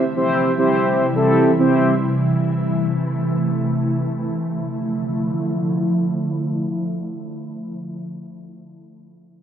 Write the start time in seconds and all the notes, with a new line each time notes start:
Already playing: C3 E3 G3 E4
0.16 C4 E4 G4 C5
0.58 C4 E4 G4 C5
1.15 C4 E4 G4 A4
1.59 C4 E4 G4 C5
1.73 A3
4.30 D3 F3 A3 E4